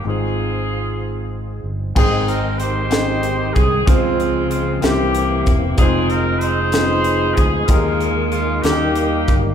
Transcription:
<<
  \new Staff \with { instrumentName = "Horn section" } { \time 6/8 \key aes \major \tempo 4. = 63 << { aes'2~ aes'8 r8 | aes'8 bes'8 c''4. aes'8 | f'4 f'8 g'4 r8 | aes'8 bes'8 c''4. aes'8 |
f'4 f'8 g'4 r8 | } \\ { <c' f'>2~ <c' f'>8 r8 | <c' ees'>4 <ees' g'>4. r8 | <aes c'>4. <bes e'>4. | <c' ees'>4 <ees' aes'>4. r8 |
<aes bes>4. <bes ees'>4. | } >> }
  \new Staff \with { instrumentName = "Grand piano" } { \time 6/8 \key aes \major <aes c' ees' f' c''>2. | <aes c' ees' c'' g''>4 r8 <aes c' ees' g' ees''>4 r8 | <aes c' f' c''>4 r8 <bes c' e' g' c''>4 r8 | <aes c' ees' f' c''>4 r8 <aes c' ees' f' ces'' c''>4 r8 |
<ees' g' aes' bes'>4 r8 <ees' ges' g' bes'>4 r8 | }
  \new Staff \with { instrumentName = "Grand piano" } { \clef bass \time 6/8 \key aes \major aes,4. r4. | aes,4. r4. | des4. c4. | r2. |
ees4. ees4. | }
  \new Staff \with { instrumentName = "Tonewheel organ" } { \time 6/8 \key aes \major r2. | <ees aes c' ges' g''>2. | <des f c' aes'>4. <e bes c' g'>4. | <g aes c' ees' f'>2. |
<ees aes bes aes'>4. <ees g bes g'>4. | }
  \new Staff \with { instrumentName = "Fingered electric bass" } { \clef bass \time 6/8 \key aes \major aes,,2~ aes,,8 g,,8 | aes,,2~ aes,,8 c,8 | des,4. c,4 e,,8 | f,,2~ f,,8 d,8 |
ees,4. ees,4 g,,8 | }
  \new DrumStaff \with { instrumentName = "Drums" } \drummode { \time 6/8 r4. r4. | <cymc bd>8 hh8 hh8 <hh sn>8 hh8 <hh bd>8 | <hh bd>8 hh8 hh8 <hh sn>8 hh8 <hh bd>8 | <hh bd>8 hh8 hh8 <hh sn>8 hh8 <hh bd>8 |
<hh bd>8 hh8 hh8 <hh sn>8 hh8 <hh bd>8 | }
>>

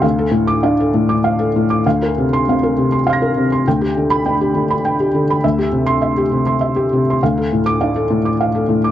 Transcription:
<<
  \new Staff \with { instrumentName = "Felt piano" } { \time 3/4 \key d \minor \tempo 4 = 101 << { r8. d'''8 r4. r16 | r8. c'''8 r8. <c''' f''' bes'''>4 | r8. b''8 r4. r16 | r8. c'''8 r4. r16 |
r8. d'''8 r4. r16 | } \\ { f''16 a'8 r16 f''16 a'16 a,16 d'''16 f''16 a'16 a,16 d'''16 | f''16 bes'8 r16 f''16 bes'16 c16 c'''16 f''16 bes'16 c16 c'''16 | g''16 g'8 r16 g''16 g'16 d16 b''16 g''16 g'16 d16 b''16 | e''16 g'16 c8 e''16 g'16 c16 c'''16 e''16 g'16 c16 c'''16 |
f''16 a'8 r16 f''16 a'16 a,16 d'''16 f''16 a'16 a,16 d'''16 | } >> }
  \new Staff \with { instrumentName = "Felt piano" } { \clef bass \time 3/4 \key d \minor d,8 a,8 d'4 r4 | d,8 c8 c'4 r4 | d,8 d8 d'4 r4 | d,2. |
d,8 a,8 d'4 r4 | }
>>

